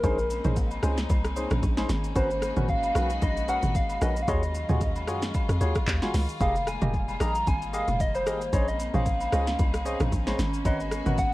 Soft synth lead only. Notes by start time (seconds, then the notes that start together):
Already playing: A#4
2.17 C5
2.70 F5
3.23 D#5
3.49 F#5
3.76 F5
4.03 D#5
4.23 F5
4.29 D#5
6.41 F5
6.68 G#5
7.21 A#5
7.48 G#5
7.74 F5
8.01 D#5
8.15 C5
8.54 C#5
8.68 D#5
8.95 F5
10.66 D#5
11.19 F#5